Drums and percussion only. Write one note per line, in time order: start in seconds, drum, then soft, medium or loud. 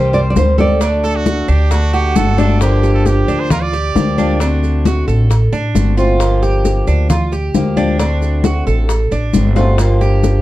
0.14 high bongo soft
0.14 high conga soft
0.14 maracas soft
0.36 high bongo soft
0.36 low bongo medium
0.36 high conga medium
0.36 maracas medium
0.58 high conga medium
0.58 maracas soft
0.81 high bongo medium
0.81 high conga soft
0.81 maracas medium
1.04 high bongo soft
1.04 high conga soft
1.04 maracas soft
1.26 high bongo medium
1.26 high conga loud
1.26 maracas medium
1.48 high bongo soft
1.48 high conga soft
1.48 maracas soft
1.71 high bongo medium
1.71 high conga soft
1.71 maracas medium
1.93 high bongo soft
1.93 high conga soft
1.93 maracas soft
2.16 high bongo soft
2.16 low bongo medium
2.16 high conga medium
2.16 maracas medium
2.38 high bongo medium
2.38 high conga medium
2.38 maracas soft
2.61 high bongo medium
2.61 high conga soft
2.61 maracas medium
2.83 high bongo soft
2.83 high conga soft
2.83 maracas soft
3.06 high bongo medium
3.06 high conga medium
3.06 maracas medium
3.28 high bongo soft
3.28 high conga soft
3.28 maracas soft
3.50 high bongo medium
3.50 high conga soft
3.50 low conga medium
3.50 maracas medium
3.73 high bongo soft
3.73 high conga soft
3.73 maracas soft
3.96 high bongo soft
3.96 low bongo medium
3.96 high conga medium
3.96 maracas medium
4.18 high conga medium
4.18 maracas soft
4.40 high bongo medium
4.40 high conga soft
4.40 maracas medium
4.63 high bongo soft
4.63 high conga soft
4.63 maracas soft
4.85 high bongo medium
4.85 high conga medium
4.85 maracas medium
5.08 high bongo soft
5.08 high conga soft
5.08 maracas soft
5.30 high bongo medium
5.30 high conga soft
5.30 maracas medium
5.53 high bongo soft
5.53 high conga soft
5.53 maracas soft
5.75 high bongo soft
5.75 low bongo medium
5.75 high conga medium
5.75 maracas medium
5.98 maracas soft
6.20 high bongo medium
6.20 high conga soft
6.20 maracas medium
6.42 high bongo soft
6.42 high conga soft
6.42 maracas soft
6.65 high bongo medium
6.65 high conga medium
6.65 maracas medium
6.87 high bongo soft
6.87 high conga soft
6.87 maracas soft
7.10 high bongo medium
7.10 high conga soft
7.10 low conga medium
7.10 maracas medium
7.32 high bongo soft
7.32 high conga soft
7.32 maracas soft
7.54 high bongo soft
7.54 low bongo medium
7.54 high conga medium
7.54 maracas medium
7.77 high conga medium
7.77 maracas soft
8.00 high bongo medium
8.00 high conga soft
8.00 maracas medium
8.22 high bongo soft
8.22 high conga soft
8.22 maracas soft
8.44 high bongo medium
8.44 high conga loud
8.44 maracas medium
8.66 high bongo soft
8.66 high conga soft
8.66 maracas soft
8.89 high bongo medium
8.89 high conga soft
8.89 maracas medium
9.11 high bongo soft
9.11 high conga soft
9.11 maracas soft
9.33 high bongo soft
9.33 low bongo medium
9.33 high conga medium
9.33 maracas medium
9.56 high bongo medium
9.56 maracas soft
9.78 high bongo medium
9.78 high conga soft
9.78 maracas medium
10.01 high bongo soft
10.01 high conga soft
10.01 maracas soft
10.23 high bongo medium
10.23 high conga medium
10.23 maracas medium